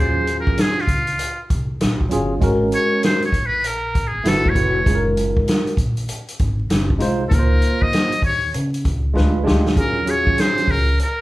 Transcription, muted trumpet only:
0.00 C5
0.40 A#4
0.61 G#4
0.81 F4
2.75 C#5
3.05 C5
3.25 C#5
3.46 B4
3.67 A#4
4.07 G#4
4.28 A4
4.49 C#5
7.29 A4
7.33 A#4
7.82 D#5
8.25 C#5
9.79 A#4
10.10 C#5
10.40 C5
10.71 A#4
11.02 A#4

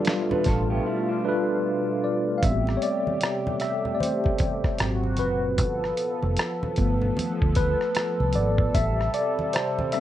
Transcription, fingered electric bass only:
0.31 muted fingered electric bass stroke
0.47 A1
2.43 A1
4.81 G#1
5.20 F#1
5.58 G1
6.23 F1
6.78 G1
7.18 muted fingered electric bass stroke
7.42 D2
8.20 C2
8.35 G#1
8.75 A1

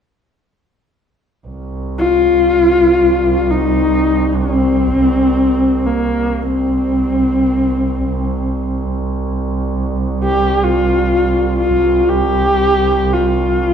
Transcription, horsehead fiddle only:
1.98 F4
3.50 D#4
4.36 C4
5.85 A#3
6.43 C4
10.23 G4
10.63 F4
11.59 F4
12.09 G4
13.12 F4

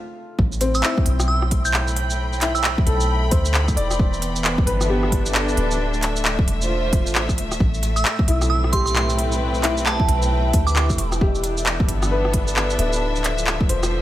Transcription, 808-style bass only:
0.39 A1
1.06 B1
2.87 B1
3.32 D2
3.77 E1
4.67 G1
5.57 D1
6.47 E1
7.06 A1
7.38 D1
7.60 A1
8.28 B1
10.08 B1
10.54 D2
10.98 E1
11.89 G1
12.79 D1
13.69 E1

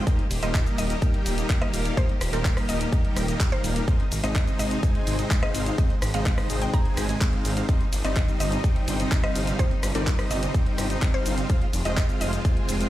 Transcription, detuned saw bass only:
0.31 D#1
0.43 D#1
0.78 D#1
1.26 D#1
1.73 D#1
2.21 D#1
2.33 D#1
2.69 D#1
3.16 D#1
3.64 D#1
4.12 G#1
4.24 G#1
4.59 G#1
5.07 G#1
5.54 G#1
6.02 G#1
6.14 G#1
6.50 G#1
6.97 G#1
7.45 G#1
7.92 G1
8.04 G1
8.40 G1
8.88 G1
9.35 G1
9.83 G1
9.95 G1
10.31 G1
10.78 G1
11.26 G1
11.73 F1
11.85 F1
12.21 F1
12.69 F1

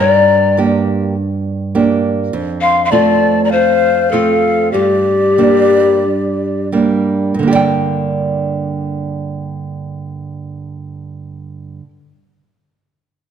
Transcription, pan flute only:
0.00 C#5
0.10 D5
2.61 F5
2.85 F5
2.91 D5
3.45 D5
3.52 C5
4.11 A4
4.72 G4

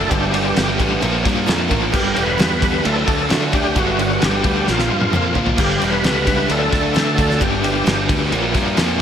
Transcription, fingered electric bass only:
0.11 G1
0.57 G1
0.80 A1
1.03 A#1
1.26 G2
1.49 F2
1.71 A1
1.94 G1
2.17 E1
2.40 E2
2.86 D2
3.08 D2
3.32 D3
3.54 D2
3.76 G1
4.23 G1
4.44 D2
4.69 A#1
4.91 G2
5.13 F2
5.36 A#1
5.59 G1
5.82 E1
6.05 C#2
6.50 D2
6.73 D2
6.96 D3
7.18 D2
7.41 G1
7.87 G1
8.09 D2
8.32 A#1
8.55 G2
8.78 F2

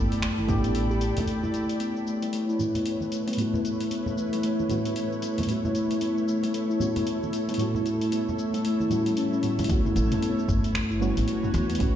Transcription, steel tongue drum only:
0.22 A3
0.38 E4
0.65 B3
0.91 G4
1.01 G4
1.17 A3
1.28 A3
1.43 E4
1.54 A3
1.80 B3
2.07 A3
2.33 A3
2.49 E4
2.75 B3
3.12 A3
3.28 B3
3.38 A3
3.54 E4
3.65 A3
3.91 B3
4.17 A3
4.44 A3
4.60 E4
4.86 B3
5.23 A3
5.39 B3
5.49 A3
5.65 E4
5.75 A3
6.01 B3
6.28 A3
6.54 A3
6.70 E4
6.96 B3
7.33 A3
7.49 B3
7.60 A3
7.76 E4
7.86 A3
8.12 B3
8.39 A3
8.65 A3
8.80 E4
8.91 C#4
9.07 G3
9.17 C#4
9.33 C#4
9.70 A3
9.86 E4
9.96 A3
10.22 B3
10.49 A3
10.75 A3
10.91 E4
11.17 B3
11.54 A3
11.69 B3
11.80 A3

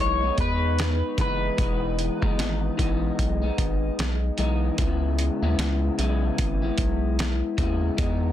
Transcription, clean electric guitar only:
Already playing: E3 G#3 B3 D#4
0.21 G#3 B3 D#4
1.18 E3 G#3 B3 D#4
1.57 E3 G#3 B3 D#4
2.22 E3 G#3 B3 D#4
2.77 E3 G#3 B3 D#4
3.42 G#3 B3 D#4
4.38 E3 G#3 B3 D#4
4.78 C#3 G#3 B3 E4
5.43 C#3 G#3 B3 E4
5.98 C#3 G#3 B3 E4
6.62 G#3 B3 E4
7.57 C#3 G#3 B3 E4
7.97 E3 G#3 B3 D#4

